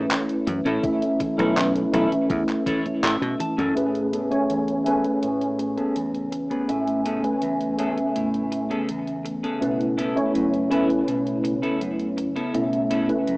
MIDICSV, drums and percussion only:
0, 0, Header, 1, 2, 480
1, 0, Start_track
1, 0, Key_signature, 3, "major"
1, 0, Tempo, 731707
1, 548, Time_signature, 4, 2, 24, 8
1, 8773, End_track
2, 0, Start_track
2, 0, Title_t, "Drums"
2, 70, Note_on_c, 9, 39, 110
2, 70, Note_on_c, 9, 42, 61
2, 70, Note_on_c, 9, 63, 28
2, 135, Note_off_c, 9, 39, 0
2, 135, Note_off_c, 9, 42, 0
2, 135, Note_off_c, 9, 63, 0
2, 192, Note_on_c, 9, 42, 36
2, 257, Note_off_c, 9, 42, 0
2, 310, Note_on_c, 9, 42, 91
2, 310, Note_on_c, 9, 63, 66
2, 375, Note_off_c, 9, 42, 0
2, 375, Note_off_c, 9, 63, 0
2, 431, Note_on_c, 9, 42, 39
2, 431, Note_on_c, 9, 63, 37
2, 497, Note_off_c, 9, 42, 0
2, 497, Note_off_c, 9, 63, 0
2, 548, Note_on_c, 9, 36, 118
2, 549, Note_on_c, 9, 42, 68
2, 549, Note_on_c, 9, 63, 30
2, 613, Note_off_c, 9, 36, 0
2, 615, Note_off_c, 9, 42, 0
2, 615, Note_off_c, 9, 63, 0
2, 670, Note_on_c, 9, 42, 42
2, 736, Note_off_c, 9, 42, 0
2, 788, Note_on_c, 9, 36, 59
2, 789, Note_on_c, 9, 42, 89
2, 789, Note_on_c, 9, 63, 65
2, 853, Note_off_c, 9, 36, 0
2, 855, Note_off_c, 9, 42, 0
2, 855, Note_off_c, 9, 63, 0
2, 913, Note_on_c, 9, 42, 43
2, 913, Note_on_c, 9, 63, 41
2, 978, Note_off_c, 9, 42, 0
2, 978, Note_off_c, 9, 63, 0
2, 1030, Note_on_c, 9, 39, 115
2, 1030, Note_on_c, 9, 42, 66
2, 1030, Note_on_c, 9, 63, 28
2, 1096, Note_off_c, 9, 39, 0
2, 1096, Note_off_c, 9, 42, 0
2, 1096, Note_off_c, 9, 63, 0
2, 1152, Note_on_c, 9, 42, 40
2, 1217, Note_off_c, 9, 42, 0
2, 1270, Note_on_c, 9, 42, 94
2, 1270, Note_on_c, 9, 63, 68
2, 1336, Note_off_c, 9, 42, 0
2, 1336, Note_off_c, 9, 63, 0
2, 1392, Note_on_c, 9, 42, 41
2, 1392, Note_on_c, 9, 63, 38
2, 1457, Note_off_c, 9, 42, 0
2, 1457, Note_off_c, 9, 63, 0
2, 1508, Note_on_c, 9, 36, 115
2, 1510, Note_on_c, 9, 42, 67
2, 1510, Note_on_c, 9, 63, 30
2, 1573, Note_off_c, 9, 36, 0
2, 1575, Note_off_c, 9, 42, 0
2, 1575, Note_off_c, 9, 63, 0
2, 1631, Note_on_c, 9, 39, 37
2, 1631, Note_on_c, 9, 42, 42
2, 1697, Note_off_c, 9, 39, 0
2, 1697, Note_off_c, 9, 42, 0
2, 1747, Note_on_c, 9, 36, 62
2, 1750, Note_on_c, 9, 42, 96
2, 1750, Note_on_c, 9, 63, 67
2, 1813, Note_off_c, 9, 36, 0
2, 1816, Note_off_c, 9, 42, 0
2, 1816, Note_off_c, 9, 63, 0
2, 1874, Note_on_c, 9, 42, 39
2, 1874, Note_on_c, 9, 63, 40
2, 1939, Note_off_c, 9, 42, 0
2, 1939, Note_off_c, 9, 63, 0
2, 1992, Note_on_c, 9, 39, 113
2, 1992, Note_on_c, 9, 42, 67
2, 1992, Note_on_c, 9, 63, 29
2, 2058, Note_off_c, 9, 39, 0
2, 2058, Note_off_c, 9, 42, 0
2, 2058, Note_off_c, 9, 63, 0
2, 2114, Note_on_c, 9, 42, 39
2, 2179, Note_off_c, 9, 42, 0
2, 2231, Note_on_c, 9, 42, 93
2, 2231, Note_on_c, 9, 63, 68
2, 2296, Note_off_c, 9, 42, 0
2, 2296, Note_off_c, 9, 63, 0
2, 2353, Note_on_c, 9, 42, 41
2, 2353, Note_on_c, 9, 63, 38
2, 2418, Note_off_c, 9, 42, 0
2, 2418, Note_off_c, 9, 63, 0
2, 2471, Note_on_c, 9, 42, 64
2, 2537, Note_off_c, 9, 42, 0
2, 2591, Note_on_c, 9, 42, 39
2, 2657, Note_off_c, 9, 42, 0
2, 2711, Note_on_c, 9, 42, 88
2, 2776, Note_off_c, 9, 42, 0
2, 2830, Note_on_c, 9, 42, 40
2, 2896, Note_off_c, 9, 42, 0
2, 2950, Note_on_c, 9, 42, 63
2, 3016, Note_off_c, 9, 42, 0
2, 3070, Note_on_c, 9, 42, 39
2, 3136, Note_off_c, 9, 42, 0
2, 3188, Note_on_c, 9, 42, 89
2, 3254, Note_off_c, 9, 42, 0
2, 3309, Note_on_c, 9, 42, 38
2, 3375, Note_off_c, 9, 42, 0
2, 3429, Note_on_c, 9, 42, 66
2, 3495, Note_off_c, 9, 42, 0
2, 3552, Note_on_c, 9, 42, 40
2, 3618, Note_off_c, 9, 42, 0
2, 3670, Note_on_c, 9, 42, 86
2, 3735, Note_off_c, 9, 42, 0
2, 3789, Note_on_c, 9, 42, 37
2, 3855, Note_off_c, 9, 42, 0
2, 3909, Note_on_c, 9, 42, 64
2, 3975, Note_off_c, 9, 42, 0
2, 4032, Note_on_c, 9, 42, 39
2, 4098, Note_off_c, 9, 42, 0
2, 4149, Note_on_c, 9, 42, 90
2, 4214, Note_off_c, 9, 42, 0
2, 4271, Note_on_c, 9, 42, 39
2, 4337, Note_off_c, 9, 42, 0
2, 4389, Note_on_c, 9, 42, 67
2, 4455, Note_off_c, 9, 42, 0
2, 4511, Note_on_c, 9, 42, 41
2, 4576, Note_off_c, 9, 42, 0
2, 4629, Note_on_c, 9, 42, 89
2, 4695, Note_off_c, 9, 42, 0
2, 4750, Note_on_c, 9, 42, 41
2, 4815, Note_off_c, 9, 42, 0
2, 4866, Note_on_c, 9, 42, 64
2, 4931, Note_off_c, 9, 42, 0
2, 4989, Note_on_c, 9, 42, 40
2, 5055, Note_off_c, 9, 42, 0
2, 5107, Note_on_c, 9, 42, 89
2, 5173, Note_off_c, 9, 42, 0
2, 5231, Note_on_c, 9, 42, 38
2, 5297, Note_off_c, 9, 42, 0
2, 5351, Note_on_c, 9, 42, 67
2, 5417, Note_off_c, 9, 42, 0
2, 5472, Note_on_c, 9, 42, 39
2, 5537, Note_off_c, 9, 42, 0
2, 5590, Note_on_c, 9, 42, 86
2, 5655, Note_off_c, 9, 42, 0
2, 5712, Note_on_c, 9, 42, 38
2, 5778, Note_off_c, 9, 42, 0
2, 5829, Note_on_c, 9, 42, 66
2, 5895, Note_off_c, 9, 42, 0
2, 5952, Note_on_c, 9, 42, 37
2, 6018, Note_off_c, 9, 42, 0
2, 6071, Note_on_c, 9, 42, 90
2, 6137, Note_off_c, 9, 42, 0
2, 6192, Note_on_c, 9, 42, 39
2, 6258, Note_off_c, 9, 42, 0
2, 6312, Note_on_c, 9, 42, 65
2, 6378, Note_off_c, 9, 42, 0
2, 6433, Note_on_c, 9, 42, 38
2, 6499, Note_off_c, 9, 42, 0
2, 6551, Note_on_c, 9, 42, 88
2, 6617, Note_off_c, 9, 42, 0
2, 6672, Note_on_c, 9, 42, 39
2, 6738, Note_off_c, 9, 42, 0
2, 6791, Note_on_c, 9, 42, 66
2, 6856, Note_off_c, 9, 42, 0
2, 6912, Note_on_c, 9, 42, 37
2, 6977, Note_off_c, 9, 42, 0
2, 7030, Note_on_c, 9, 42, 89
2, 7095, Note_off_c, 9, 42, 0
2, 7151, Note_on_c, 9, 42, 38
2, 7216, Note_off_c, 9, 42, 0
2, 7269, Note_on_c, 9, 42, 66
2, 7335, Note_off_c, 9, 42, 0
2, 7392, Note_on_c, 9, 42, 40
2, 7457, Note_off_c, 9, 42, 0
2, 7510, Note_on_c, 9, 42, 88
2, 7576, Note_off_c, 9, 42, 0
2, 7632, Note_on_c, 9, 42, 38
2, 7697, Note_off_c, 9, 42, 0
2, 7749, Note_on_c, 9, 42, 63
2, 7815, Note_off_c, 9, 42, 0
2, 7869, Note_on_c, 9, 42, 39
2, 7934, Note_off_c, 9, 42, 0
2, 7989, Note_on_c, 9, 42, 90
2, 8055, Note_off_c, 9, 42, 0
2, 8110, Note_on_c, 9, 42, 38
2, 8176, Note_off_c, 9, 42, 0
2, 8229, Note_on_c, 9, 42, 64
2, 8295, Note_off_c, 9, 42, 0
2, 8351, Note_on_c, 9, 42, 38
2, 8417, Note_off_c, 9, 42, 0
2, 8467, Note_on_c, 9, 42, 83
2, 8533, Note_off_c, 9, 42, 0
2, 8589, Note_on_c, 9, 42, 39
2, 8655, Note_off_c, 9, 42, 0
2, 8708, Note_on_c, 9, 42, 63
2, 8773, Note_off_c, 9, 42, 0
2, 8773, End_track
0, 0, End_of_file